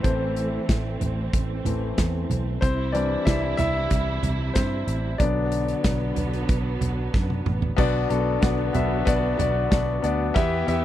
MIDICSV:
0, 0, Header, 1, 5, 480
1, 0, Start_track
1, 0, Tempo, 644884
1, 33, Time_signature, 4, 2, 24, 8
1, 8074, End_track
2, 0, Start_track
2, 0, Title_t, "Grand piano"
2, 0, Program_c, 0, 0
2, 0, Control_c, 0, 64, 127
2, 0, Note_on_c, 0, 52, 41
2, 0, Note_on_c, 0, 57, 36
2, 0, Note_on_c, 0, 60, 44
2, 0, Note_on_c, 0, 64, 70
2, 0, Note_on_c, 0, 69, 72
2, 0, Note_on_c, 0, 76, 96
2, 24, Note_on_c, 0, 72, 75
2, 29, Note_off_c, 0, 52, 0
2, 29, Note_on_c, 0, 52, 53
2, 34, Note_off_c, 0, 57, 0
2, 34, Note_on_c, 0, 57, 46
2, 37, Note_off_c, 0, 60, 0
2, 37, Note_on_c, 0, 60, 58
2, 719, Note_off_c, 0, 72, 0
2, 726, Note_off_c, 0, 60, 0
2, 1220, Note_off_c, 0, 52, 0
2, 1222, Note_off_c, 0, 57, 0
2, 1231, Note_on_c, 0, 52, 47
2, 1233, Note_on_c, 0, 57, 45
2, 1236, Note_on_c, 0, 60, 51
2, 1448, Note_off_c, 0, 52, 0
2, 1449, Note_off_c, 0, 57, 0
2, 1450, Note_off_c, 0, 60, 0
2, 1942, Note_on_c, 0, 72, 93
2, 1956, Note_on_c, 0, 60, 65
2, 1964, Control_c, 0, 64, 0
2, 1965, Note_off_c, 0, 64, 0
2, 1965, Note_off_c, 0, 76, 0
2, 1966, Note_off_c, 0, 69, 0
2, 2077, Control_c, 0, 64, 127
2, 2170, Note_off_c, 0, 72, 0
2, 2177, Note_on_c, 0, 74, 84
2, 2178, Note_off_c, 0, 60, 0
2, 2181, Note_on_c, 0, 52, 57
2, 2184, Note_on_c, 0, 55, 52
2, 2191, Note_on_c, 0, 60, 56
2, 2192, Note_on_c, 0, 62, 69
2, 2415, Note_off_c, 0, 62, 0
2, 2421, Note_on_c, 0, 76, 93
2, 2432, Note_off_c, 0, 74, 0
2, 2435, Note_on_c, 0, 64, 74
2, 2649, Note_off_c, 0, 76, 0
2, 2657, Note_off_c, 0, 64, 0
2, 2660, Note_on_c, 0, 76, 112
2, 2676, Note_on_c, 0, 64, 76
2, 3364, Note_off_c, 0, 64, 0
2, 3377, Note_on_c, 0, 72, 73
2, 3382, Note_off_c, 0, 60, 0
2, 3393, Note_on_c, 0, 60, 62
2, 3408, Note_off_c, 0, 76, 0
2, 3837, Note_off_c, 0, 52, 0
2, 3839, Note_off_c, 0, 55, 0
2, 3843, Note_off_c, 0, 60, 0
2, 3858, Note_on_c, 0, 74, 88
2, 3863, Note_on_c, 0, 50, 55
2, 3869, Note_on_c, 0, 54, 49
2, 3874, Note_on_c, 0, 59, 64
2, 3874, Note_on_c, 0, 62, 71
2, 3879, Note_off_c, 0, 72, 0
2, 3882, Control_c, 0, 64, 0
2, 4031, Control_c, 0, 64, 127
2, 4555, Note_off_c, 0, 74, 0
2, 4564, Note_off_c, 0, 62, 0
2, 5758, Note_off_c, 0, 50, 0
2, 5761, Note_off_c, 0, 54, 0
2, 5763, Note_off_c, 0, 59, 0
2, 5780, Note_on_c, 0, 59, 109
2, 5786, Note_on_c, 0, 62, 99
2, 5789, Note_on_c, 0, 47, 79
2, 5791, Note_on_c, 0, 66, 99
2, 5795, Note_on_c, 0, 74, 116
2, 5800, Control_c, 0, 64, 0
2, 5951, Control_c, 0, 64, 127
2, 6011, Note_off_c, 0, 59, 0
2, 6015, Note_off_c, 0, 62, 0
2, 6017, Note_off_c, 0, 66, 0
2, 6019, Note_off_c, 0, 74, 0
2, 6022, Note_on_c, 0, 59, 86
2, 6027, Note_on_c, 0, 62, 81
2, 6030, Note_on_c, 0, 66, 75
2, 6035, Note_on_c, 0, 69, 92
2, 6249, Note_off_c, 0, 59, 0
2, 6255, Note_off_c, 0, 62, 0
2, 6256, Note_off_c, 0, 66, 0
2, 6259, Note_off_c, 0, 69, 0
2, 6260, Note_on_c, 0, 59, 85
2, 6266, Note_on_c, 0, 62, 72
2, 6270, Note_on_c, 0, 66, 72
2, 6274, Note_on_c, 0, 74, 86
2, 6480, Note_off_c, 0, 47, 0
2, 6487, Note_off_c, 0, 59, 0
2, 6494, Note_off_c, 0, 62, 0
2, 6496, Note_off_c, 0, 66, 0
2, 6498, Note_on_c, 0, 59, 87
2, 6499, Note_off_c, 0, 74, 0
2, 6506, Note_on_c, 0, 62, 78
2, 6508, Note_on_c, 0, 66, 82
2, 6514, Note_on_c, 0, 76, 88
2, 6727, Note_off_c, 0, 59, 0
2, 6734, Note_off_c, 0, 62, 0
2, 6735, Note_off_c, 0, 66, 0
2, 6738, Note_off_c, 0, 76, 0
2, 6739, Note_on_c, 0, 59, 102
2, 6747, Note_on_c, 0, 62, 95
2, 6749, Note_on_c, 0, 66, 93
2, 6756, Note_on_c, 0, 74, 112
2, 6967, Note_off_c, 0, 59, 0
2, 6970, Note_off_c, 0, 62, 0
2, 6976, Note_off_c, 0, 66, 0
2, 6979, Note_off_c, 0, 74, 0
2, 6979, Note_on_c, 0, 59, 83
2, 6981, Note_on_c, 0, 62, 79
2, 6988, Note_on_c, 0, 66, 78
2, 6992, Note_on_c, 0, 74, 92
2, 7209, Note_off_c, 0, 59, 0
2, 7212, Note_off_c, 0, 62, 0
2, 7215, Note_off_c, 0, 66, 0
2, 7217, Note_off_c, 0, 74, 0
2, 7221, Note_on_c, 0, 59, 75
2, 7223, Note_on_c, 0, 62, 75
2, 7228, Note_on_c, 0, 66, 72
2, 7232, Note_on_c, 0, 74, 93
2, 7450, Note_off_c, 0, 59, 0
2, 7453, Note_off_c, 0, 62, 0
2, 7455, Note_off_c, 0, 66, 0
2, 7457, Note_off_c, 0, 74, 0
2, 7462, Note_on_c, 0, 59, 88
2, 7467, Note_on_c, 0, 62, 74
2, 7470, Note_on_c, 0, 66, 79
2, 7476, Note_on_c, 0, 74, 95
2, 7686, Note_off_c, 0, 59, 0
2, 7695, Note_off_c, 0, 62, 0
2, 7696, Note_off_c, 0, 66, 0
2, 7698, Note_on_c, 0, 59, 114
2, 7699, Note_off_c, 0, 74, 0
2, 7702, Note_on_c, 0, 64, 107
2, 7706, Note_on_c, 0, 52, 78
2, 7707, Note_on_c, 0, 67, 104
2, 7712, Note_on_c, 0, 76, 127
2, 7722, Control_c, 0, 64, 0
2, 7840, Control_c, 0, 64, 127
2, 7929, Note_off_c, 0, 59, 0
2, 7932, Note_off_c, 0, 64, 0
2, 7934, Note_off_c, 0, 67, 0
2, 7937, Note_off_c, 0, 76, 0
2, 7941, Note_on_c, 0, 59, 91
2, 7946, Note_on_c, 0, 64, 85
2, 7952, Note_on_c, 0, 67, 84
2, 7954, Note_on_c, 0, 76, 99
2, 8074, Note_off_c, 0, 52, 0
2, 8074, Note_off_c, 0, 59, 0
2, 8074, Note_off_c, 0, 64, 0
2, 8074, Note_off_c, 0, 67, 0
2, 8074, Note_off_c, 0, 76, 0
2, 8074, End_track
3, 0, Start_track
3, 0, Title_t, "String section"
3, 0, Program_c, 1, 48
3, 0, Note_on_c, 1, 52, 65
3, 0, Note_on_c, 1, 57, 56
3, 0, Note_on_c, 1, 60, 73
3, 1922, Note_off_c, 1, 57, 0
3, 1923, Note_off_c, 1, 52, 0
3, 1923, Note_off_c, 1, 60, 0
3, 1946, Note_on_c, 1, 55, 66
3, 1948, Note_on_c, 1, 64, 79
3, 1949, Note_on_c, 1, 48, 71
3, 3850, Note_off_c, 1, 55, 0
3, 3851, Note_off_c, 1, 64, 0
3, 3852, Note_off_c, 1, 48, 0
3, 3868, Note_on_c, 1, 59, 79
3, 3869, Note_on_c, 1, 50, 76
3, 3871, Note_on_c, 1, 54, 66
3, 5771, Note_off_c, 1, 50, 0
3, 5771, Note_off_c, 1, 59, 0
3, 5772, Note_off_c, 1, 54, 0
3, 5788, Note_on_c, 1, 54, 65
3, 5788, Note_on_c, 1, 59, 78
3, 5789, Note_on_c, 1, 50, 70
3, 7690, Note_off_c, 1, 54, 0
3, 7691, Note_off_c, 1, 50, 0
3, 7691, Note_off_c, 1, 59, 0
3, 7715, Note_on_c, 1, 67, 90
3, 7717, Note_on_c, 1, 59, 64
3, 7718, Note_on_c, 1, 52, 79
3, 8074, Note_off_c, 1, 52, 0
3, 8074, Note_off_c, 1, 59, 0
3, 8074, Note_off_c, 1, 67, 0
3, 8074, End_track
4, 0, Start_track
4, 0, Title_t, "Picked electric bass"
4, 0, Program_c, 2, 34
4, 32, Note_on_c, 2, 33, 100
4, 426, Note_off_c, 2, 33, 0
4, 514, Note_on_c, 2, 33, 94
4, 711, Note_off_c, 2, 33, 0
4, 751, Note_on_c, 2, 33, 93
4, 948, Note_off_c, 2, 33, 0
4, 992, Note_on_c, 2, 33, 90
4, 1189, Note_off_c, 2, 33, 0
4, 1228, Note_on_c, 2, 33, 93
4, 1427, Note_off_c, 2, 33, 0
4, 1474, Note_on_c, 2, 40, 83
4, 1671, Note_off_c, 2, 40, 0
4, 1710, Note_on_c, 2, 35, 88
4, 1908, Note_off_c, 2, 35, 0
4, 1953, Note_on_c, 2, 36, 99
4, 2346, Note_off_c, 2, 36, 0
4, 2432, Note_on_c, 2, 36, 89
4, 2629, Note_off_c, 2, 36, 0
4, 2668, Note_on_c, 2, 36, 90
4, 2867, Note_off_c, 2, 36, 0
4, 2911, Note_on_c, 2, 36, 94
4, 3108, Note_off_c, 2, 36, 0
4, 3148, Note_on_c, 2, 36, 98
4, 3346, Note_off_c, 2, 36, 0
4, 3393, Note_on_c, 2, 43, 80
4, 3590, Note_off_c, 2, 43, 0
4, 3628, Note_on_c, 2, 33, 84
4, 3827, Note_off_c, 2, 33, 0
4, 3869, Note_on_c, 2, 35, 104
4, 4264, Note_off_c, 2, 35, 0
4, 4349, Note_on_c, 2, 35, 94
4, 4547, Note_off_c, 2, 35, 0
4, 4589, Note_on_c, 2, 35, 92
4, 4787, Note_off_c, 2, 35, 0
4, 4831, Note_on_c, 2, 35, 94
4, 5029, Note_off_c, 2, 35, 0
4, 5070, Note_on_c, 2, 35, 90
4, 5268, Note_off_c, 2, 35, 0
4, 5314, Note_on_c, 2, 42, 84
4, 5510, Note_off_c, 2, 42, 0
4, 5553, Note_on_c, 2, 33, 92
4, 5749, Note_off_c, 2, 33, 0
4, 5793, Note_on_c, 2, 35, 94
4, 5989, Note_off_c, 2, 35, 0
4, 6033, Note_on_c, 2, 35, 95
4, 6229, Note_off_c, 2, 35, 0
4, 6271, Note_on_c, 2, 35, 99
4, 6468, Note_off_c, 2, 35, 0
4, 6513, Note_on_c, 2, 35, 93
4, 6709, Note_off_c, 2, 35, 0
4, 6750, Note_on_c, 2, 35, 92
4, 6948, Note_off_c, 2, 35, 0
4, 6994, Note_on_c, 2, 35, 105
4, 7190, Note_off_c, 2, 35, 0
4, 7233, Note_on_c, 2, 35, 104
4, 7429, Note_off_c, 2, 35, 0
4, 7472, Note_on_c, 2, 38, 89
4, 7669, Note_off_c, 2, 38, 0
4, 7710, Note_on_c, 2, 40, 107
4, 7907, Note_off_c, 2, 40, 0
4, 7950, Note_on_c, 2, 40, 100
4, 8074, Note_off_c, 2, 40, 0
4, 8074, End_track
5, 0, Start_track
5, 0, Title_t, "Drums"
5, 32, Note_on_c, 9, 36, 104
5, 32, Note_on_c, 9, 42, 78
5, 107, Note_off_c, 9, 36, 0
5, 107, Note_off_c, 9, 42, 0
5, 272, Note_on_c, 9, 42, 67
5, 346, Note_off_c, 9, 42, 0
5, 514, Note_on_c, 9, 36, 99
5, 514, Note_on_c, 9, 42, 74
5, 516, Note_on_c, 9, 38, 100
5, 588, Note_off_c, 9, 36, 0
5, 588, Note_off_c, 9, 42, 0
5, 590, Note_off_c, 9, 38, 0
5, 753, Note_on_c, 9, 42, 58
5, 755, Note_on_c, 9, 43, 62
5, 827, Note_off_c, 9, 42, 0
5, 830, Note_off_c, 9, 43, 0
5, 993, Note_on_c, 9, 36, 106
5, 994, Note_on_c, 9, 42, 81
5, 1068, Note_off_c, 9, 36, 0
5, 1069, Note_off_c, 9, 42, 0
5, 1232, Note_on_c, 9, 43, 63
5, 1236, Note_on_c, 9, 42, 67
5, 1306, Note_off_c, 9, 43, 0
5, 1310, Note_off_c, 9, 42, 0
5, 1472, Note_on_c, 9, 42, 88
5, 1474, Note_on_c, 9, 38, 107
5, 1475, Note_on_c, 9, 36, 97
5, 1546, Note_off_c, 9, 42, 0
5, 1548, Note_off_c, 9, 38, 0
5, 1550, Note_off_c, 9, 36, 0
5, 1716, Note_on_c, 9, 43, 59
5, 1717, Note_on_c, 9, 42, 64
5, 1791, Note_off_c, 9, 42, 0
5, 1791, Note_off_c, 9, 43, 0
5, 1952, Note_on_c, 9, 36, 104
5, 1955, Note_on_c, 9, 42, 74
5, 2027, Note_off_c, 9, 36, 0
5, 2030, Note_off_c, 9, 42, 0
5, 2193, Note_on_c, 9, 42, 71
5, 2268, Note_off_c, 9, 42, 0
5, 2432, Note_on_c, 9, 36, 99
5, 2432, Note_on_c, 9, 42, 82
5, 2434, Note_on_c, 9, 38, 106
5, 2506, Note_off_c, 9, 42, 0
5, 2507, Note_off_c, 9, 36, 0
5, 2508, Note_off_c, 9, 38, 0
5, 2668, Note_on_c, 9, 42, 61
5, 2671, Note_on_c, 9, 43, 68
5, 2743, Note_off_c, 9, 42, 0
5, 2746, Note_off_c, 9, 43, 0
5, 2907, Note_on_c, 9, 42, 85
5, 2911, Note_on_c, 9, 36, 97
5, 2981, Note_off_c, 9, 42, 0
5, 2985, Note_off_c, 9, 36, 0
5, 3148, Note_on_c, 9, 43, 68
5, 3152, Note_on_c, 9, 42, 67
5, 3223, Note_off_c, 9, 43, 0
5, 3226, Note_off_c, 9, 42, 0
5, 3389, Note_on_c, 9, 42, 85
5, 3391, Note_on_c, 9, 38, 102
5, 3393, Note_on_c, 9, 36, 106
5, 3464, Note_off_c, 9, 42, 0
5, 3466, Note_off_c, 9, 38, 0
5, 3468, Note_off_c, 9, 36, 0
5, 3631, Note_on_c, 9, 42, 67
5, 3705, Note_off_c, 9, 42, 0
5, 3869, Note_on_c, 9, 42, 76
5, 3870, Note_on_c, 9, 36, 109
5, 3944, Note_off_c, 9, 36, 0
5, 3944, Note_off_c, 9, 42, 0
5, 4107, Note_on_c, 9, 42, 69
5, 4181, Note_off_c, 9, 42, 0
5, 4231, Note_on_c, 9, 42, 46
5, 4305, Note_off_c, 9, 42, 0
5, 4347, Note_on_c, 9, 42, 79
5, 4350, Note_on_c, 9, 36, 105
5, 4350, Note_on_c, 9, 38, 96
5, 4422, Note_off_c, 9, 42, 0
5, 4424, Note_off_c, 9, 38, 0
5, 4425, Note_off_c, 9, 36, 0
5, 4587, Note_on_c, 9, 42, 61
5, 4590, Note_on_c, 9, 43, 67
5, 4662, Note_off_c, 9, 42, 0
5, 4665, Note_off_c, 9, 43, 0
5, 4715, Note_on_c, 9, 42, 42
5, 4789, Note_off_c, 9, 42, 0
5, 4829, Note_on_c, 9, 42, 81
5, 4831, Note_on_c, 9, 36, 112
5, 4903, Note_off_c, 9, 42, 0
5, 4906, Note_off_c, 9, 36, 0
5, 5070, Note_on_c, 9, 43, 67
5, 5074, Note_on_c, 9, 42, 64
5, 5145, Note_off_c, 9, 43, 0
5, 5148, Note_off_c, 9, 42, 0
5, 5314, Note_on_c, 9, 36, 112
5, 5316, Note_on_c, 9, 38, 53
5, 5389, Note_off_c, 9, 36, 0
5, 5391, Note_off_c, 9, 38, 0
5, 5434, Note_on_c, 9, 48, 56
5, 5508, Note_off_c, 9, 48, 0
5, 5554, Note_on_c, 9, 45, 84
5, 5628, Note_off_c, 9, 45, 0
5, 5673, Note_on_c, 9, 43, 78
5, 5748, Note_off_c, 9, 43, 0
5, 5792, Note_on_c, 9, 36, 107
5, 5793, Note_on_c, 9, 49, 93
5, 5866, Note_off_c, 9, 36, 0
5, 5867, Note_off_c, 9, 49, 0
5, 6031, Note_on_c, 9, 42, 71
5, 6106, Note_off_c, 9, 42, 0
5, 6269, Note_on_c, 9, 42, 84
5, 6272, Note_on_c, 9, 36, 111
5, 6272, Note_on_c, 9, 38, 105
5, 6344, Note_off_c, 9, 42, 0
5, 6346, Note_off_c, 9, 36, 0
5, 6346, Note_off_c, 9, 38, 0
5, 6509, Note_on_c, 9, 42, 64
5, 6512, Note_on_c, 9, 43, 71
5, 6583, Note_off_c, 9, 42, 0
5, 6586, Note_off_c, 9, 43, 0
5, 6749, Note_on_c, 9, 42, 84
5, 6751, Note_on_c, 9, 36, 112
5, 6823, Note_off_c, 9, 42, 0
5, 6825, Note_off_c, 9, 36, 0
5, 6990, Note_on_c, 9, 43, 71
5, 6994, Note_on_c, 9, 42, 76
5, 7065, Note_off_c, 9, 43, 0
5, 7069, Note_off_c, 9, 42, 0
5, 7232, Note_on_c, 9, 42, 84
5, 7233, Note_on_c, 9, 36, 114
5, 7234, Note_on_c, 9, 38, 120
5, 7306, Note_off_c, 9, 42, 0
5, 7308, Note_off_c, 9, 36, 0
5, 7308, Note_off_c, 9, 38, 0
5, 7471, Note_on_c, 9, 42, 68
5, 7546, Note_off_c, 9, 42, 0
5, 7710, Note_on_c, 9, 36, 115
5, 7711, Note_on_c, 9, 42, 80
5, 7785, Note_off_c, 9, 36, 0
5, 7785, Note_off_c, 9, 42, 0
5, 7950, Note_on_c, 9, 42, 74
5, 8025, Note_off_c, 9, 42, 0
5, 8074, End_track
0, 0, End_of_file